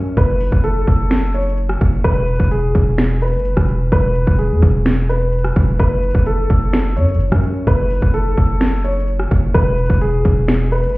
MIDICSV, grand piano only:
0, 0, Header, 1, 2, 480
1, 0, Start_track
1, 0, Key_signature, 3, "minor"
1, 0, Tempo, 468750
1, 174, Time_signature, 4, 2, 24, 8
1, 11240, End_track
2, 0, Start_track
2, 0, Title_t, "Grand piano"
2, 0, Program_c, 0, 0
2, 0, Note_on_c, 0, 73, 73
2, 133, Note_off_c, 0, 73, 0
2, 178, Note_on_c, 0, 71, 94
2, 628, Note_off_c, 0, 71, 0
2, 653, Note_on_c, 0, 69, 86
2, 1333, Note_off_c, 0, 69, 0
2, 1376, Note_on_c, 0, 73, 70
2, 2054, Note_off_c, 0, 73, 0
2, 2092, Note_on_c, 0, 71, 108
2, 2544, Note_off_c, 0, 71, 0
2, 2574, Note_on_c, 0, 68, 91
2, 3253, Note_off_c, 0, 68, 0
2, 3297, Note_on_c, 0, 71, 74
2, 3975, Note_off_c, 0, 71, 0
2, 4017, Note_on_c, 0, 71, 97
2, 4467, Note_off_c, 0, 71, 0
2, 4491, Note_on_c, 0, 68, 79
2, 5172, Note_off_c, 0, 68, 0
2, 5216, Note_on_c, 0, 71, 73
2, 5894, Note_off_c, 0, 71, 0
2, 5935, Note_on_c, 0, 71, 94
2, 6386, Note_off_c, 0, 71, 0
2, 6416, Note_on_c, 0, 69, 82
2, 7094, Note_off_c, 0, 69, 0
2, 7133, Note_on_c, 0, 73, 71
2, 7813, Note_off_c, 0, 73, 0
2, 7857, Note_on_c, 0, 71, 93
2, 8307, Note_off_c, 0, 71, 0
2, 8334, Note_on_c, 0, 69, 84
2, 9013, Note_off_c, 0, 69, 0
2, 9056, Note_on_c, 0, 73, 73
2, 9734, Note_off_c, 0, 73, 0
2, 9773, Note_on_c, 0, 71, 105
2, 10225, Note_off_c, 0, 71, 0
2, 10255, Note_on_c, 0, 68, 93
2, 10934, Note_off_c, 0, 68, 0
2, 10976, Note_on_c, 0, 71, 77
2, 11240, Note_off_c, 0, 71, 0
2, 11240, End_track
0, 0, End_of_file